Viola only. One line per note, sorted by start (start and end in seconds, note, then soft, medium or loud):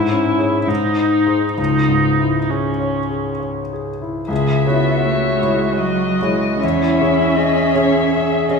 0.00 0.61 E4 medium
0.61 0.69 E4 soft
0.68 1.57 D#4 medium
1.58 2.40 D#4 medium
2.41 2.51 D#4 soft
2.50 3.42 C#4 soft
4.28 4.69 G#4 soft
4.67 6.61 F#4 soft
6.62 7.39 E4 soft
7.37 8.12 G#4 soft
8.13 8.60 G#4 soft